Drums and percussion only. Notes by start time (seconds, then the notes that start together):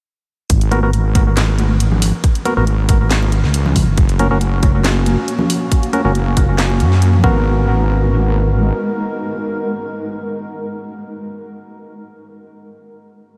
0.50 kick, closed hi-hat
0.61 closed hi-hat
0.72 closed hi-hat, high conga
0.93 closed hi-hat
1.15 kick, closed hi-hat, muted conga, high conga
1.37 snare, clap, closed hi-hat, muted conga
1.58 closed hi-hat, high conga
1.80 closed hi-hat
1.91 low conga
2.02 open hi-hat
2.24 kick, closed hi-hat
2.35 closed hi-hat
2.45 closed hi-hat, high conga
2.67 closed hi-hat
2.88 kick, closed hi-hat, muted conga, high conga
3.11 snare, clap, closed hi-hat
3.22 muted conga
3.32 closed hi-hat
3.44 snare
3.54 closed hi-hat
3.66 low conga
3.76 kick, open hi-hat, muted conga
3.98 kick, closed hi-hat
4.09 closed hi-hat
4.19 closed hi-hat, high conga
4.41 closed hi-hat
4.63 kick, closed hi-hat, muted conga, high conga
4.84 snare, clap, closed hi-hat, muted conga
5.06 closed hi-hat, high conga
5.28 closed hi-hat
5.39 low conga
5.50 open hi-hat
5.72 kick, closed hi-hat
5.83 closed hi-hat
5.93 closed hi-hat, high conga
6.15 closed hi-hat
6.37 kick, closed hi-hat, muted conga, high conga
6.58 snare, clap, closed hi-hat
6.70 muted conga
6.80 closed hi-hat
6.92 snare
7.02 closed hi-hat
7.13 low conga
7.24 kick, muted conga